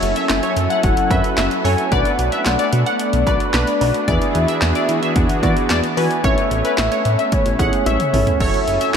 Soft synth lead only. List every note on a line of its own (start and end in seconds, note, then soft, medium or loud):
0.00 0.29 E5 loud
0.30 0.80 E5 loud
0.84 1.34 F#5 loud
1.65 1.93 G#5 loud
1.92 2.45 F#5 loud
2.46 2.96 F#5 loud
3.00 3.50 D5 medium
3.54 4.10 D5 medium
4.08 4.61 E5 loud
4.62 5.12 E5 loud
5.16 5.66 F#5 medium
5.97 6.26 G#5 loud
6.24 6.78 E5 loud
6.78 7.34 E5 loud
7.32 7.86 C#5 loud
7.86 8.42 C#5 medium
8.40 8.94 E5 loud